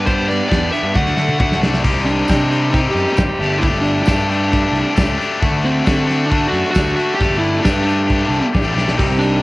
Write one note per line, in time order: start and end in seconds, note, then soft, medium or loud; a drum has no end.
0.00 0.40 G2 medium
0.00 0.91 G4 medium
0.00 0.93 B4 medium
0.00 1.82 D5 medium
0.00 0.94 B5 medium
0.06 0.47 B3 medium
0.06 0.28 D4 medium
0.06 0.26 G4 medium
0.06 0.29 C5 medium
0.06 kick loud
0.06 closed hi-hat medium
0.27 0.49 B3 medium
0.27 0.48 D4 medium
0.27 0.49 G4 medium
0.27 0.47 D5 medium
0.27 snare soft
0.27 closed hi-hat medium
0.48 0.70 E2 medium
0.48 0.71 B3 medium
0.48 0.70 D4 medium
0.48 0.69 G4 medium
0.48 0.72 D5 medium
0.48 kick loud
0.48 snare loud
0.48 closed hi-hat medium
0.70 0.93 B3 medium
0.70 0.93 D4 medium
0.70 0.92 G4 medium
0.70 0.95 E5 medium
0.70 closed hi-hat medium
0.83 0.93 G2 medium
0.94 1.14 D2 medium
0.94 1.38 A3 medium
0.94 1.18 D4 medium
0.94 1.15 F#4 medium
0.94 1.84 F#4 medium
0.94 1.84 A4 medium
0.94 1.58 F#5 medium
0.94 1.84 A5 medium
0.94 kick loud
0.94 snare medium
1.06 snare soft
1.17 1.36 D3 medium
1.17 1.39 A3 medium
1.17 1.38 D4 medium
1.17 1.40 F#4 medium
1.17 snare medium
1.28 mid tom medium
1.39 1.60 D2 medium
1.39 1.62 A3 medium
1.39 1.61 D4 medium
1.39 1.61 F#4 medium
1.39 kick loud
1.39 mid tom medium
1.52 snare medium
1.61 1.81 C2 medium
1.61 1.83 A3 medium
1.61 1.83 D4 medium
1.61 1.83 F#4 medium
1.61 snare medium
1.74 snare medium
1.83 1.93 C2 loud
1.83 3.40 D#3 medium
1.83 2.28 G3 medium
1.83 2.28 C4 medium
1.83 2.28 D#4 medium
1.83 2.29 G4 loud
1.83 5.38 G4 medium
1.83 3.40 C5 medium
1.83 3.39 G5 medium
1.83 kick loud
1.83 crash loud
1.94 2.23 C2 loud
1.94 closed hi-hat soft
2.04 2.71 D4 medium
2.04 2.68 D5 medium
2.04 closed hi-hat medium
2.28 2.86 C3 medium
2.28 2.51 G3 medium
2.28 2.50 C4 medium
2.28 2.50 D#4 medium
2.28 2.51 G4 medium
2.28 kick loud
2.28 snare loud
2.28 closed hi-hat loud
2.28 tambourine medium
2.51 2.71 G3 loud
2.51 2.72 C4 medium
2.51 2.72 D#4 medium
2.51 2.73 G4 loud
2.51 snare soft
2.51 closed hi-hat medium
2.70 3.16 G3 loud
2.70 3.16 C4 medium
2.70 2.78 D#4 medium
2.70 3.17 D#4 loud
2.70 3.17 G4 loud
2.70 2.81 D#5 medium
2.70 kick loud
2.75 closed hi-hat medium
2.91 3.05 F#2 medium
2.91 3.12 G4 medium
2.91 3.14 G5 medium
2.97 closed hi-hat medium
3.09 closed hi-hat soft
3.13 3.62 G4 loud
3.13 3.58 G5 loud
3.13 tambourine medium
3.17 3.28 G#1 medium
3.17 3.39 G3 medium
3.17 3.39 C4 medium
3.17 3.39 D#4 medium
3.17 3.39 G4 medium
3.17 kick loud
3.17 snare loud
3.17 closed hi-hat loud
3.30 closed hi-hat soft
3.39 3.68 G1 loud
3.39 3.62 A3 loud
3.39 3.62 D4 loud
3.39 3.62 G4 medium
3.39 8.96 A4 medium
3.39 5.39 A5 medium
3.39 closed hi-hat medium
3.43 8.97 D5 medium
3.58 4.07 A3 medium
3.58 4.07 D4 medium
3.58 3.65 E4 medium
3.58 3.69 E5 medium
3.63 4.07 G4 loud
3.63 kick loud
3.63 closed hi-hat loud
3.72 4.01 G1 loud
3.72 closed hi-hat soft
3.81 4.02 D4 medium
3.81 4.05 D5 medium
3.81 closed hi-hat medium
3.97 closed hi-hat soft
4.03 4.90 D4 medium
4.03 4.92 D5 medium
4.03 tambourine medium
4.07 4.64 G2 medium
4.07 4.29 A3 medium
4.07 4.29 D4 medium
4.07 4.29 G4 medium
4.07 kick loud
4.07 snare loud
4.07 closed hi-hat loud
4.29 4.50 A3 medium
4.29 4.51 D4 medium
4.29 4.51 G4 medium
4.29 closed hi-hat medium
4.51 4.95 A3 medium
4.51 4.96 D4 loud
4.51 4.95 G4 loud
4.51 kick loud
4.51 closed hi-hat medium
4.72 4.82 C2 medium
4.72 closed hi-hat medium
4.95 5.16 C#2 medium
4.95 5.17 A3 medium
4.95 5.18 D4 medium
4.95 5.17 G4 medium
4.95 kick loud
4.95 snare loud
4.95 closed hi-hat loud
4.95 tambourine medium
5.17 5.40 A3 medium
5.17 5.40 D4 medium
5.17 5.40 G4 medium
5.17 closed hi-hat medium
5.39 5.50 D2 loud
5.39 5.85 A3 medium
5.39 5.86 D4 medium
5.39 7.17 F#4 medium
5.39 5.85 F#4 medium
5.39 7.18 A5 medium
5.39 kick loud
5.39 closed hi-hat medium
5.51 5.80 D2 loud
5.64 6.33 C4 medium
5.64 6.27 C5 medium
5.64 closed hi-hat medium
5.85 6.44 D3 medium
5.85 6.06 A3 medium
5.85 6.07 D4 medium
5.85 6.06 F#4 medium
5.85 kick loud
5.85 snare loud
5.85 closed hi-hat medium
5.85 tambourine medium
6.06 6.29 A3 medium
6.06 6.29 D4 medium
6.06 6.29 F#4 medium
6.06 snare soft
6.06 closed hi-hat medium
6.26 6.48 D4 medium
6.26 6.49 D5 medium
6.30 6.72 A3 medium
6.30 6.72 D4 loud
6.30 6.72 F#4 loud
6.30 kick loud
6.30 closed hi-hat medium
6.48 6.69 F#4 medium
6.48 6.69 F#5 medium
6.53 6.62 F#2 medium
6.53 closed hi-hat medium
6.65 closed hi-hat soft
6.71 6.94 A3 medium
6.71 6.95 D4 medium
6.71 7.14 F#4 loud
6.71 6.95 F#4 medium
6.71 7.14 F#5 loud
6.75 6.95 D2 medium
6.75 kick loud
6.75 snare loud
6.75 closed hi-hat loud
6.75 tambourine medium
6.88 closed hi-hat soft
6.95 7.17 A3 loud
6.95 7.18 D4 medium
6.95 7.18 F#4 loud
6.95 closed hi-hat medium
7.14 7.62 A3 medium
7.14 7.37 G4 loud
7.14 7.39 G5 loud
7.19 7.28 G1 loud
7.19 7.62 D4 medium
7.19 7.62 G4 medium
7.19 8.98 A5 medium
7.19 kick loud
7.19 closed hi-hat loud
7.23 8.97 G4 medium
7.29 7.58 G1 loud
7.29 closed hi-hat medium
7.38 7.63 E4 medium
7.38 7.62 E5 medium
7.43 closed hi-hat medium
7.55 closed hi-hat soft
7.59 7.83 A3 medium
7.59 8.48 D4 medium
7.59 7.84 D4 medium
7.59 7.85 G4 medium
7.59 8.49 D5 medium
7.64 8.22 G2 medium
7.64 kick loud
7.64 snare loud
7.64 closed hi-hat loud
7.64 tambourine medium
7.77 closed hi-hat soft
7.85 8.05 A3 medium
7.85 8.06 D4 medium
7.85 8.07 G4 loud
7.85 closed hi-hat medium
8.07 8.52 A3 medium
8.07 8.52 D4 loud
8.07 8.53 G4 loud
8.07 kick loud
8.07 closed hi-hat medium
8.29 8.40 C2 medium
8.29 closed hi-hat medium
8.53 8.75 A1 medium
8.53 8.73 A3 medium
8.53 8.74 D4 medium
8.53 8.75 G4 loud
8.53 kick loud
8.53 snare loud
8.53 closed hi-hat loud
8.53 tambourine medium
8.75 8.96 B1 medium
8.75 8.97 A3 medium
8.75 8.97 D4 medium
8.75 8.98 G4 loud
8.75 snare medium
8.88 snare medium
8.97 9.09 C2 loud
8.97 9.42 D#3 medium
8.97 9.42 G3 medium
8.97 9.41 C4 medium
8.97 9.42 D#4 medium
8.97 9.42 G4 medium
8.97 9.42 C5 medium
8.97 9.42 G5 medium
8.97 kick loud
8.97 closed hi-hat loud
8.97 crash loud
9.09 9.38 C2 loud
9.09 closed hi-hat soft
9.19 9.42 D4 medium
9.19 closed hi-hat medium
9.23 9.42 D5 medium